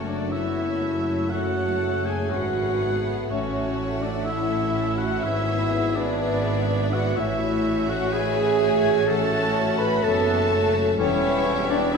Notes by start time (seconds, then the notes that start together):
Already playing: F#1 F#2 A3 F#4 A4 C#5 C#6
0.06 D4 D5 F#5
0.29 B3 E4 C#5 E5 C#6
0.34 E5
0.58 F#5
0.80 A3 A4
1.30 C#3 F#4 A4 C#5 F#5
1.57 A3
1.83 C#5
2.05 G#4 F#5 G#5
2.29 G#1 G#2 C#4 F#4 G#4 B4 C#5 F#5 C#6
2.57 F#5
2.81 B3 A4
3.06 F#4
3.29 A1 A2 A3 C#4 F#4 A4 C#5 E5 F#5
3.56 A3
3.80 C#5
4.02 D4 D5 E5
4.24 E4 E5
4.28 C#4 E4 C#6
4.78 A4
4.97 F#4 F#5
5.02 E4
5.23 G#1 G#2 B3 E4 G#4 B4 E5
5.49 B3
5.95 D4 B4 D5
6.20 B3 B4 E5 E6
6.46 E5
6.69 B4 D5
6.92 E4 F#4 F#5
7.16 A1 A2 A3 C#4 E4 F#4 C#5 E5
7.43 C#4
7.67 E5
7.89 F#4 C#5 F#5
8.11 G#4 B4 G#5 E6
8.39 E5
8.61 C#5
8.86 E4
9.06 E3 A4 F#5 A5
9.10 C#4
9.32 C#4
9.57 E5
9.78 B4 C#5 B5
10.03 F#1 F#2 B3 A4 E5 A5 E6
10.26 E5
10.51 A3 C#5
10.75 E4
10.98 E1 E2 G3 B3 C#4 E4 C#5 E5 G5
11.23 B3
11.47 E5
11.69 D4 D5 G5
11.93 C#4 E4 E5 E6